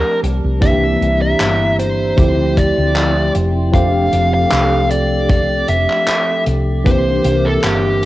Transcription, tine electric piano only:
Already playing: F3 A3 C4 D4 G4
0.60 E3 A#3 C4 D4 G4
2.16 F3 A3 C4 E4 G4
3.72 F3 A3 C4 D4 G4
6.84 E3 A#3 C4 D4 G4

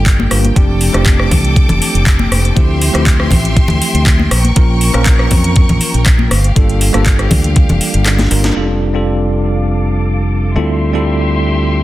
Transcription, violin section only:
Already playing: G4 G5
0.56 A4 D6
2.57 G4 E5 C6
4.31 A#4 C#6
6.31 G4 F5
8.56 A4 F5 D6
10.55 G4 E5 C6

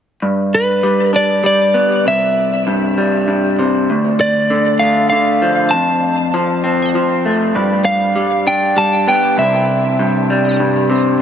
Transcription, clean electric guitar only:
0.22 G2
0.83 G3
1.13 D4
1.44 G3
1.74 B3
2.05 C2
2.67 G2
2.97 G3
3.28 G2
3.59 C3
3.90 D2
4.50 D3
4.81 A3
5.12 D3
5.42 F3
5.73 F2
6.34 F3
6.64 C4
6.95 F3
7.25 A3
7.55 G2
8.16 G3
8.47 D4
8.76 G3
9.08 B3
9.38 C2
9.99 G2
10.30 G3
10.60 G2
10.90 C3

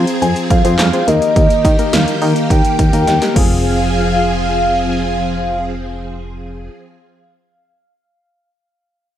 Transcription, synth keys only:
Already playing: C4 F4 G#4 C5
0.65 C4 F4 G#4 C5
0.93 C4 F4 G#4 C5
1.08 A#3 D#4 G4 A#4
1.79 A#3 D#4 G4 A#4
2.22 A#3 D#4 G4 A#4
2.93 A#3 D#4 G4 A#4
3.22 A#3 D#4 G4 A#4
3.34 C4 F4 G#4

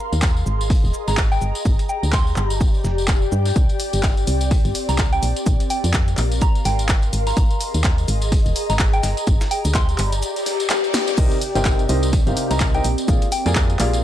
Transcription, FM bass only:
0.12 D#2
0.46 G#1
0.84 D#1
1.08 G#1
1.42 G1
1.65 G1
2.03 D2
2.37 G1
2.84 F1
3.32 G2
3.56 C2
3.94 G1
4.27 C2
4.65 G1
4.89 C2
5.23 A#1
5.46 A#1
5.84 F2
6.18 A#1
6.65 G#1
7.13 G#1
7.37 G#1
7.74 D#2
8.08 G#1
8.46 D#1
8.70 G#1
9.03 G1
9.27 G1
9.65 D2
9.99 G1
11.18 C2
11.55 G1
11.89 C2
12.27 G1
12.51 C2
12.84 A#1
13.08 A#1
13.46 F2
13.80 A#1

